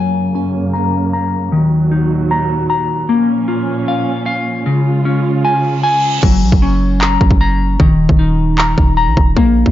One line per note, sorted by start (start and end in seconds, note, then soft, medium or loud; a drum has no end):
0.00 1.51 F#2 medium
0.00 1.51 C#3 medium
0.00 1.52 F#3 medium
0.00 1.51 A#3 medium
0.35 1.52 C#4 medium
0.73 1.12 A#5 medium
1.13 1.52 A#5 medium
1.52 3.08 D#2 medium
1.52 3.08 A#2 medium
1.52 3.09 D#3 medium
1.52 3.08 F#3 medium
1.92 3.09 D#4 medium
2.31 2.68 A#5 medium
2.70 3.09 A#5 medium
3.09 4.64 A#2 medium
3.09 4.64 F3 medium
3.09 4.66 A#3 medium
3.09 4.64 C#4 medium
3.48 4.66 F4 medium
3.88 4.25 F5 medium
4.26 4.66 F5 medium
4.66 6.21 C#3 medium
4.66 6.22 C#3 medium
4.66 6.21 G#3 medium
4.66 6.21 F4 medium
5.05 6.23 C#4 medium
5.44 5.82 G#5 medium
5.44 reverse cymbal medium
5.83 6.23 G#5 loud
6.22 6.44 F#1 loud
6.22 7.79 F#3 medium
6.22 kick loud
6.22 crash loud
6.42 6.52 A#1 loud
6.52 7.18 F#1 loud
6.52 kick medium
6.62 7.80 C#4 medium
7.01 7.40 A#5 medium
7.01 clap loud
7.21 7.30 F#1 loud
7.21 kick medium
7.31 7.78 F#1 loud
7.31 kick medium
7.41 7.80 A#5 loud
7.80 8.08 D#1 loud
7.80 9.37 D#3 medium
7.80 kick loud
8.09 8.75 D#1 loud
8.09 kick medium
8.19 9.37 D#4 medium
8.58 8.96 A#5 medium
8.58 clap loud
8.78 9.09 D#1 loud
8.78 kick medium
8.97 9.36 A#5 loud
9.07 9.16 A#1 loud
9.17 9.36 D#1 loud
9.17 kick loud
9.36 9.65 A#1 loud
9.36 9.71 A#3 loud
9.36 kick loud
9.66 9.71 A#1 loud
9.66 kick medium